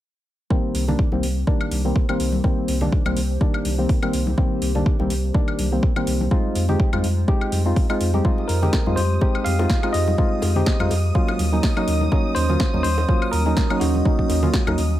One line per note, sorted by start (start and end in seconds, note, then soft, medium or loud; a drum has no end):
0.50 0.85 D#3 medium
0.50 0.85 G3 medium
0.50 6.27 A#3 medium
0.50 0.85 A#3 medium
0.50 6.27 C4 medium
0.50 0.85 C4 loud
0.50 6.27 G4 medium
0.50 6.27 C5 medium
0.50 kick loud
0.75 0.95 C2 loud
0.75 open hi-hat loud
0.88 1.09 D#3 medium
0.88 1.09 G3 medium
0.88 1.09 A#3 medium
0.88 1.09 D4 medium
0.88 low conga medium
0.99 kick loud
1.12 1.21 C2 loud
1.12 1.26 D#3 medium
1.12 1.26 G3 medium
1.12 1.26 A#3 medium
1.12 1.26 C4 medium
1.12 high conga medium
1.23 1.44 C2 loud
1.23 open hi-hat loud
1.47 1.81 D#3 medium
1.47 1.82 G3 medium
1.47 1.82 A#3 medium
1.47 1.82 D4 medium
1.47 kick loud
1.61 high woodblock medium
1.71 1.92 C2 medium
1.71 open hi-hat loud
1.71 high conga medium
1.85 2.06 D#3 medium
1.85 2.06 G3 medium
1.85 2.06 A#3 medium
1.85 2.06 C4 medium
1.96 kick loud
2.09 2.41 D#3 loud
2.09 2.41 G3 medium
2.09 2.42 A#3 medium
2.09 2.42 C4 loud
2.09 high woodblock medium
2.20 2.40 C2 medium
2.20 open hi-hat loud
2.32 high conga medium
2.44 2.78 D#3 loud
2.44 2.78 G3 medium
2.44 2.78 A#3 medium
2.44 2.79 C4 loud
2.44 kick loud
2.68 2.89 C2 loud
2.68 open hi-hat loud
2.81 3.02 D#3 medium
2.81 3.03 G3 medium
2.81 3.03 A#3 medium
2.81 3.03 D4 medium
2.81 low conga medium
2.92 kick loud
3.05 3.15 C2 loud
3.05 3.20 D#3 medium
3.05 3.20 G3 medium
3.05 3.20 A#3 medium
3.05 3.20 C4 medium
3.05 high conga medium
3.05 high woodblock medium
3.17 3.37 C2 loud
3.17 open hi-hat loud
3.41 3.75 D#3 medium
3.41 3.75 G3 medium
3.41 3.75 A#3 medium
3.41 3.75 D4 medium
3.41 kick loud
3.54 high woodblock medium
3.65 3.86 C2 loud
3.65 open hi-hat loud
3.65 high conga medium
3.78 3.99 D#3 medium
3.78 3.99 G3 medium
3.78 3.99 A#3 medium
3.78 4.00 C4 medium
3.89 kick loud
3.89 open hi-hat medium
4.02 4.35 D#3 loud
4.02 4.35 G3 medium
4.02 4.35 A#3 medium
4.02 4.35 C4 loud
4.02 high woodblock medium
4.13 4.34 C2 medium
4.13 open hi-hat loud
4.27 high conga loud
4.37 4.72 D#3 medium
4.37 4.72 G3 medium
4.37 4.72 A#3 medium
4.37 4.72 C4 loud
4.37 kick loud
4.62 4.82 C2 loud
4.62 open hi-hat loud
4.75 4.96 D#3 medium
4.75 4.96 G3 medium
4.75 4.96 A#3 medium
4.75 4.96 D4 medium
4.75 low conga medium
4.86 kick loud
4.99 5.08 C2 loud
4.99 5.13 D#3 medium
4.99 5.13 G3 medium
4.99 5.13 A#3 medium
4.99 5.14 C4 medium
4.99 high conga medium
5.10 5.31 C2 loud
5.10 open hi-hat loud
5.34 5.69 D#3 medium
5.34 5.69 G3 medium
5.34 5.69 A#3 medium
5.34 5.69 D4 medium
5.34 kick loud
5.48 high woodblock medium
5.59 5.79 C2 loud
5.59 open hi-hat loud
5.59 high conga medium
5.72 5.93 D#3 medium
5.72 5.93 G3 medium
5.72 5.93 A#3 medium
5.72 5.93 C4 medium
5.83 kick loud
5.96 6.28 D#3 loud
5.96 6.29 G3 medium
5.96 6.29 A#3 medium
5.96 6.29 C4 loud
5.96 high woodblock medium
6.07 6.28 C2 medium
6.07 open hi-hat loud
6.21 high conga loud
6.31 6.65 G#3 loud
6.31 11.11 G#3 medium
6.31 6.66 C4 medium
6.31 11.11 C4 medium
6.31 6.66 D#4 medium
6.31 8.23 F4 medium
6.31 6.66 F4 loud
6.31 11.11 C5 medium
6.31 kick loud
6.55 6.76 F2 loud
6.55 open hi-hat loud
6.68 6.90 G#3 medium
6.68 6.90 C4 medium
6.68 6.90 D#4 medium
6.68 6.90 G4 medium
6.68 low conga medium
6.80 kick loud
6.93 7.02 F2 loud
6.93 7.07 G#3 medium
6.93 7.07 C4 medium
6.93 7.07 D#4 medium
6.93 7.07 F4 medium
6.93 high conga medium
6.93 high woodblock medium
7.04 7.24 F2 loud
7.04 open hi-hat loud
7.28 7.62 G#3 medium
7.28 7.62 C4 medium
7.28 7.62 D#4 medium
7.28 7.63 G4 medium
7.28 kick loud
7.41 high woodblock medium
7.52 7.73 F2 loud
7.52 open hi-hat loud
7.52 high conga medium
7.65 7.86 G#3 medium
7.65 7.86 C4 medium
7.65 7.87 D#4 medium
7.65 7.87 F4 medium
7.76 kick loud
7.76 open hi-hat medium
7.89 8.11 G#3 loud
7.89 8.11 C4 medium
7.89 8.11 D#4 medium
7.89 8.11 F4 loud
7.89 high woodblock medium
8.01 8.21 F2 medium
8.01 open hi-hat loud
8.14 8.23 G#3 medium
8.14 8.23 C4 medium
8.14 8.23 D#4 medium
8.14 8.23 G4 medium
8.14 high conga loud
8.24 8.59 G#3 loud
8.24 8.59 C4 medium
8.24 8.59 D#4 medium
8.24 8.59 F4 loud
8.24 11.12 G4 medium
8.24 15.00 D#6 medium
8.24 kick loud
8.38 high bongo soft
8.48 8.69 F2 loud
8.48 8.93 A#4 medium
8.48 open hi-hat loud
8.62 8.83 G#3 medium
8.62 8.83 C4 medium
8.62 8.83 D#4 medium
8.62 8.83 G4 medium
8.62 low conga medium
8.73 kick loud
8.73 snare loud
8.73 high bongo medium
8.86 8.95 F2 loud
8.86 9.00 G#3 medium
8.86 9.00 C4 medium
8.86 9.01 D#4 medium
8.86 9.01 F4 medium
8.86 high conga medium
8.96 9.18 F2 loud
8.96 9.47 C5 loud
8.96 open hi-hat loud
9.21 9.56 G#3 medium
9.21 9.56 C4 medium
9.21 9.56 D#4 medium
9.21 9.56 G4 medium
9.21 kick loud
9.21 high bongo medium
9.35 high woodblock medium
9.44 9.66 F2 loud
9.44 9.95 F5 loud
9.44 open hi-hat loud
9.44 high conga medium
9.59 9.80 G#3 medium
9.59 9.80 C4 medium
9.59 9.80 D#4 medium
9.59 9.80 F4 loud
9.59 high bongo medium
9.70 kick loud
9.70 snare loud
9.83 10.16 G#3 loud
9.83 10.16 C4 medium
9.83 10.16 D#4 medium
9.83 10.16 F4 loud
9.83 high woodblock medium
9.93 10.15 F2 medium
9.93 11.35 D#5 medium
9.93 open hi-hat loud
10.08 high bongo medium
10.08 high conga medium
10.18 10.52 G#3 loud
10.18 10.53 C4 medium
10.18 10.53 D#4 medium
10.18 10.53 F4 loud
10.18 kick loud
10.42 10.63 F2 loud
10.42 open hi-hat loud
10.42 high bongo medium
10.55 10.77 G#3 medium
10.55 10.77 C4 medium
10.55 10.77 D#4 medium
10.55 10.77 G4 medium
10.55 low conga medium
10.66 kick loud
10.66 snare loud
10.79 10.89 F2 loud
10.79 10.94 G#3 medium
10.79 10.94 C4 medium
10.79 10.94 D#4 medium
10.79 10.94 F4 medium
10.79 high conga medium
10.79 high woodblock medium
10.91 11.11 F2 loud
10.91 open hi-hat loud
10.91 high bongo medium
11.15 11.49 F#3 medium
11.15 15.00 F#3 medium
11.15 11.49 A#3 medium
11.15 15.00 A#3 medium
11.15 11.49 C#4 medium
11.15 15.00 C#4 medium
11.15 11.50 F4 medium
11.15 15.00 D#5 medium
11.15 kick loud
11.28 high bongo medium
11.28 high woodblock medium
11.39 11.60 D#2 loud
11.39 open hi-hat loud
11.39 high conga medium
11.52 11.73 F#3 medium
11.52 11.74 A#3 medium
11.52 11.74 C#4 medium
11.52 11.74 D#4 medium
11.63 kick loud
11.63 snare loud
11.63 open hi-hat medium
11.76 12.09 F#3 loud
11.76 12.09 A#3 medium
11.76 12.09 C#4 medium
11.76 12.09 D#4 loud
11.76 high bongo medium
11.76 high woodblock medium
11.88 12.08 D#2 medium
11.88 open hi-hat loud
12.01 high conga medium
12.11 12.46 F#3 loud
12.11 12.46 A#3 medium
12.11 12.46 C#4 medium
12.11 12.46 D#4 loud
12.11 kick loud
12.11 high bongo medium
12.35 12.57 D#2 loud
12.35 12.80 C5 loud
12.35 open hi-hat loud
12.49 12.70 F#3 medium
12.49 12.70 A#3 medium
12.49 12.70 C#4 medium
12.49 12.71 F4 medium
12.49 low conga medium
12.60 kick loud
12.60 snare loud
12.60 high bongo medium
12.73 12.83 D#2 loud
12.73 12.87 F#3 medium
12.73 12.88 A#3 medium
12.73 12.88 C#4 medium
12.73 12.88 D#4 medium
12.73 high conga medium
12.83 13.05 D#2 loud
12.83 13.29 C5 loud
12.83 open hi-hat loud
12.98 high bongo medium
13.08 13.43 F#3 medium
13.08 13.43 A#3 medium
13.08 13.43 C#4 medium
13.08 13.43 F4 loud
13.08 kick loud
13.22 high woodblock medium
13.32 13.53 D#2 loud
13.32 13.77 A#4 loud
13.32 open hi-hat loud
13.32 high conga medium
13.46 13.67 F#3 medium
13.46 13.67 A#3 medium
13.46 13.67 C#4 medium
13.46 13.67 D#4 loud
13.46 high bongo soft
13.57 kick loud
13.57 snare loud
13.70 14.03 F#3 loud
13.70 14.03 A#3 medium
13.70 14.03 C#4 medium
13.70 14.03 D#4 loud
13.70 high woodblock medium
13.80 14.02 D#2 medium
13.80 15.00 F#4 medium
13.80 open hi-hat loud
13.80 high bongo medium
13.95 high conga medium
14.05 14.40 F#3 medium
14.05 14.40 A#3 medium
14.05 14.40 C#4 medium
14.05 14.40 D#4 loud
14.05 kick loud
14.19 kick medium
14.29 14.50 D#2 loud
14.29 open hi-hat loud
14.29 high bongo soft
14.43 14.64 F#3 medium
14.43 14.64 A#3 medium
14.43 14.64 C#4 medium
14.43 14.64 F4 medium
14.43 low conga medium
14.54 kick loud
14.54 snare loud
14.67 14.76 D#2 loud
14.67 14.81 F#3 medium
14.67 14.81 A#3 medium
14.67 14.81 C#4 medium
14.67 14.81 D#4 medium
14.67 high bongo medium
14.67 high conga medium
14.67 high woodblock medium
14.78 14.99 D#2 loud
14.78 open hi-hat loud